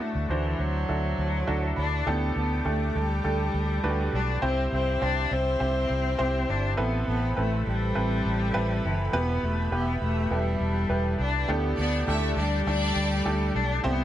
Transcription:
Already playing: A2 D4 E4 F#4 A4
0.02 A3
0.15 D2
0.29 D2 E3 D4 E4 F#4 C5
0.59 D2 F#3
0.89 D2 D4 E4 F#4 A4
1.18 D2
1.47 D2 D4 E4 F#4 A4 E5
1.76 D2 D4 B5
2.06 D2 A2 A3 B3 D4 G4 A4 G5 D6
2.36 D2 B3
2.65 D2 A3 D4 G4 A4
2.95 D2 G3
3.24 D2 A3 D4 G4 A4
3.54 D2
3.83 D2 A3 D4 F#4 B4
3.90 G4
4.13 B1 D4
4.42 C2 G2 C4 E4 G4 C5 E5 C6
4.73 C2 C4
5.01 C2 C4 D4 E4 G4 C5
5.31 C2 C4
5.60 C2 C4 E4 G4 C5
5.90 C2
6.18 C2 C4 E4 G4 C5
6.50 G1 D4
6.77 A1 B3 C4 E4 A4 B4 B5
7.08 A1 B3
7.36 A1 A3 C4 E4 A4 B4
7.67 A1 G3
7.95 A1 C4 E4 A4 B4
8.26 A1
8.54 A1 C4 E4 A4 B4
8.85 F#1 E3
9.12 E1 B2 B3 E4 G4 B4 E5
9.43 E1 A3
9.72 E1 B3 E4 G4 B4
10.02 E1 A3
10.31 E1 G3 B3 E4 G4 A4
10.60 E1
10.89 E1 B3 E4 G4 B4
11.19 C2 D4
11.48 D2 A2 A3 B3 D4 G4 A4 D5 A5
11.78 D2 B3 D4 D5
12.08 D2 A3 D4 E4 G4 A4 E5
12.37 D2 G3 D4 D5
12.67 D2 A3 D4 G4 A4 D5
12.96 D2
13.25 D2 A3 D4 G4 A4
13.55 B1 D4
13.84 C2 G2 B3 C4 E4 G4 C5 E5 C6

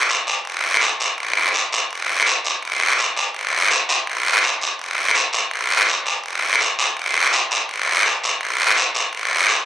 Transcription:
0.09 short guiro
0.27 short guiro
0.45 long guiro
0.81 short guiro
1.00 short guiro
1.18 long guiro
1.54 short guiro
1.72 short guiro
1.91 long guiro
2.27 short guiro
2.45 short guiro
2.63 long guiro
2.98 short guiro
3.17 short guiro
3.34 long guiro
3.71 short guiro
3.89 short guiro
4.07 long guiro
4.43 short guiro
4.61 short guiro
4.79 long guiro
5.15 short guiro
5.33 short guiro
5.51 long guiro
5.88 short guiro
6.06 short guiro
6.24 long guiro
6.60 short guiro
6.79 short guiro
6.97 long guiro
7.33 short guiro
7.51 short guiro
7.69 long guiro
8.05 short guiro
8.24 short guiro
8.41 long guiro
8.77 short guiro
8.95 short guiro
9.13 long guiro
9.48 short guiro

